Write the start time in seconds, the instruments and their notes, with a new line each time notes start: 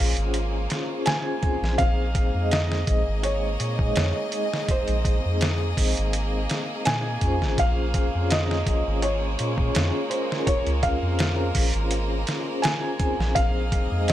Already playing: violin section G#3 A#3 F4 G#4, vibraphone C#4 F4 G#4 C5 C#5, felt piano F5
0.00 sub bass A#1
0.17 sub bass G#1, closed hi-hat
0.34 closed hi-hat
0.70 snare, closed hi-hat
0.88 vibraphone C#4 F4 G#4
0.92 vibraphone C5
1.06 felt piano G#5, snare, closed hi-hat
1.38 vibraphone C4 D#4
1.43 vibraphone G#4 C5, kick, closed hi-hat
1.62 sub bass A#1, snare
1.78 sub bass A#1, violin section A#3 G#4 D#5, felt piano F5, kick, closed hi-hat
2.15 kick, closed hi-hat
2.31 sub bass F2, vibraphone G#3 D#4
2.37 vibraphone G#4 D#5
2.51 felt piano D#5, snare, closed hi-hat
2.72 snare
2.87 sub bass A#1, kick, closed hi-hat
3.08 sub bass G#1
3.23 felt piano C#5, closed hi-hat
3.60 sub bass A#2, closed hi-hat
3.78 vibraphone G#3 D#4 G#4, kick
3.82 vibraphone D#5
3.96 sub bass F2, snare, closed hi-hat
4.28 vibraphone G#3 D#4, closed hi-hat
4.34 vibraphone G#4 D#5
4.53 snare
4.69 felt piano C5, kick, closed hi-hat
4.88 sub bass A#1, closed hi-hat
5.05 kick, closed hi-hat
5.19 vibraphone C4 D#4
5.25 sub bass F2, vibraphone G#4 C5
5.41 snare, closed hi-hat
5.77 sub bass A#1, kick, open hi-hat
5.97 sub bass G#1, closed hi-hat
6.13 closed hi-hat
6.50 snare, closed hi-hat
6.85 sub bass A#2, felt piano G#5, snare, closed hi-hat
7.19 sub bass F2, vibraphone C#4 F4, kick, closed hi-hat
7.24 vibraphone G#4 C5
7.42 sub bass G#1, snare
7.57 sub bass A#1, violin section G#3 F4, felt piano F5, kick, closed hi-hat
7.94 kick, closed hi-hat
8.10 vibraphone C#4 F4
8.15 sub bass F2, vibraphone G#4
8.19 vibraphone C#5
8.30 felt piano D#5, snare, closed hi-hat
8.51 snare
8.66 sub bass A#1, kick, closed hi-hat
8.87 sub bass G#1
9.02 felt piano C#5, closed hi-hat
9.39 sub bass A#2, closed hi-hat
9.56 vibraphone C#4 F4 G#4, kick
9.60 vibraphone C#5
9.75 sub bass F2, snare, closed hi-hat
10.07 vibraphone C#4 F4, felt piano C5, closed hi-hat
10.13 vibraphone G#4 A#4
10.32 snare
10.47 violin section A#4, felt piano C#5, kick, closed hi-hat
10.66 sub bass C#2, closed hi-hat
10.83 felt piano F5, kick, closed hi-hat
10.99 sub bass F2, vibraphone C#4 F4
11.05 vibraphone G#4 C5
11.19 snare, closed hi-hat
11.55 sub bass A#1, kick, open hi-hat
11.74 sub bass G#1, closed hi-hat
11.91 closed hi-hat
12.27 snare, closed hi-hat
12.44 vibraphone C#4 F4 G#4
12.49 vibraphone C5
12.62 felt piano G#5, snare, closed hi-hat
12.96 vibraphone C4 D#4, kick, closed hi-hat
13.03 vibraphone G#4 C5
13.19 sub bass A#1, snare
13.34 sub bass A#1, violin section G#4 D#5, felt piano F5, kick, closed hi-hat
13.72 kick, closed hi-hat
13.87 sub bass F2, vibraphone G#3 D#4
13.93 vibraphone G#4 D#5
14.08 felt piano D#5, snare, closed hi-hat